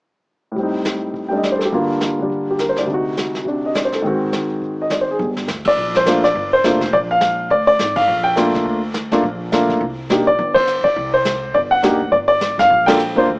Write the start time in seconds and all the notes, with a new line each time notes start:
0.52 A2 G3
0.56 C4, brush sweep, kick
0.63 D#4
0.85 snare, hi-hat pedal
1.14 brush sweep, kick
1.29 G3 A3 G5
1.33 D4
1.37 D#5
1.43 D5, snare, hi-hat pedal
1.52 C5
1.58 A4, snare
1.65 G4
1.72 G2 D3 A#3 F4, brush sweep, kick
2.00 snare, hi-hat pedal
2.19 D3 G3 D4
2.30 brush sweep, kick
2.51 G4
2.59 A#4, snare, hi-hat pedal
2.69 C5
2.76 D5, snare
2.83 D2 C3
2.88 D#4, brush sweep, kick
2.94 F#4
3.17 snare, hi-hat pedal
3.35 snare
3.45 C3 D4, brush sweep, kick
3.66 D#5
3.75 D5, snare, hi-hat pedal
3.85 C5
3.92 A4, snare
4.02 G#2 D#3 C4, brush sweep, kick
4.07 F#4
4.32 snare, hi-hat pedal
4.62 brush sweep, kick
4.82 D#5
4.90 D5, snare, hi-hat pedal
5.01 C5
5.11 G#4
5.19 G1, brush sweep, kick
5.37 snare
5.48 D2, snare, hi-hat pedal
5.65 D5, kick, ride
5.77 A#1, brush sweep
5.95 C5, snare
6.06 A3 A#3 D4 F4, snare, hi-hat pedal
6.24 D5, snare
6.35 G1, brush sweep, kick
6.53 C5
6.64 F1 A3 A#3 D4 F4, snare, hi-hat pedal
6.81 kick, snare
6.93 A#1 D5, brush sweep, kick
7.11 F5
7.20 snare, hi-hat pedal
7.50 D2 D5, brush sweep, kick
7.67 D5
7.79 G#1, snare, hi-hat pedal
7.96 F5, kick, ride
8.08 A#1, brush sweep
8.24 G5
8.36 A3 A#3 D4 F4, snare, hi-hat pedal
8.54 kick, snare
8.65 D2, brush sweep, kick
8.94 snare, hi-hat pedal
9.12 F#1 A3 A#3 D4 F4, snare
9.24 A#1, brush sweep, kick
9.52 A3 A#3 D4 F4, snare, hi-hat pedal
9.70 kick, snare
9.81 C2, brush sweep, kick
10.10 A#3 D4 D#4 G4, snare, hi-hat pedal
10.27 A#1 D5
10.39 G1, brush sweep, kick
10.55 C5, kick, ride
10.67 hi-hat pedal
10.84 D5, muted upright bass stroke, kick
10.96 C2, brush sweep, kick
11.14 C5
11.25 snare, hi-hat pedal
11.54 G1 D5, brush sweep, kick
11.71 F#5
11.83 A#3 D4 D#4 G4, snare, hi-hat pedal
12.00 D2
12.12 G1 D5, brush sweep, kick
12.28 D5
12.41 snare, hi-hat pedal
12.58 G#1 F5, snare
12.70 A#1, brush sweep, kick
12.86 A#3 D4 F4 A4 G5, snare, ride
12.99 hi-hat pedal
13.15 F#1 A#3 D4 F4 C5
13.28 D2, brush sweep, kick